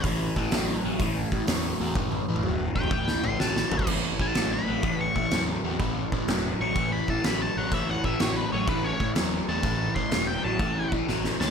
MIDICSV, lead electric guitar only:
0, 0, Header, 1, 2, 480
1, 0, Start_track
1, 0, Tempo, 479616
1, 48, Time_signature, 4, 2, 24, 8
1, 11513, End_track
2, 0, Start_track
2, 0, Title_t, "Lead electric guitar"
2, 0, Program_c, 0, 29
2, 2759, Note_on_c, 0, 79, 98
2, 2914, Note_off_c, 0, 79, 0
2, 2928, Note_on_c, 0, 79, 102
2, 3241, Note_off_c, 0, 79, 0
2, 3247, Note_on_c, 0, 84, 94
2, 3398, Note_off_c, 0, 84, 0
2, 3411, Note_on_c, 0, 81, 99
2, 3873, Note_off_c, 0, 81, 0
2, 4217, Note_on_c, 0, 81, 93
2, 4521, Note_off_c, 0, 81, 0
2, 4531, Note_on_c, 0, 83, 88
2, 4993, Note_off_c, 0, 83, 0
2, 5012, Note_on_c, 0, 85, 97
2, 5150, Note_off_c, 0, 85, 0
2, 5162, Note_on_c, 0, 85, 100
2, 5424, Note_off_c, 0, 85, 0
2, 6620, Note_on_c, 0, 85, 96
2, 6924, Note_off_c, 0, 85, 0
2, 6931, Note_on_c, 0, 83, 92
2, 7104, Note_off_c, 0, 83, 0
2, 7104, Note_on_c, 0, 81, 83
2, 7251, Note_off_c, 0, 81, 0
2, 7261, Note_on_c, 0, 83, 100
2, 7409, Note_off_c, 0, 83, 0
2, 7426, Note_on_c, 0, 81, 96
2, 7580, Note_off_c, 0, 81, 0
2, 7580, Note_on_c, 0, 78, 102
2, 7729, Note_off_c, 0, 78, 0
2, 7743, Note_on_c, 0, 76, 95
2, 7906, Note_off_c, 0, 76, 0
2, 7906, Note_on_c, 0, 78, 94
2, 8053, Note_off_c, 0, 78, 0
2, 8057, Note_on_c, 0, 76, 91
2, 8215, Note_off_c, 0, 76, 0
2, 8215, Note_on_c, 0, 73, 85
2, 8367, Note_off_c, 0, 73, 0
2, 8367, Note_on_c, 0, 71, 92
2, 8523, Note_off_c, 0, 71, 0
2, 8530, Note_on_c, 0, 73, 77
2, 8684, Note_off_c, 0, 73, 0
2, 8697, Note_on_c, 0, 71, 94
2, 8849, Note_off_c, 0, 71, 0
2, 8849, Note_on_c, 0, 73, 106
2, 9109, Note_off_c, 0, 73, 0
2, 9496, Note_on_c, 0, 81, 91
2, 9957, Note_off_c, 0, 81, 0
2, 9961, Note_on_c, 0, 84, 92
2, 10276, Note_off_c, 0, 84, 0
2, 10279, Note_on_c, 0, 79, 89
2, 10448, Note_off_c, 0, 79, 0
2, 10448, Note_on_c, 0, 81, 94
2, 10914, Note_off_c, 0, 81, 0
2, 11411, Note_on_c, 0, 81, 99
2, 11513, Note_off_c, 0, 81, 0
2, 11513, End_track
0, 0, End_of_file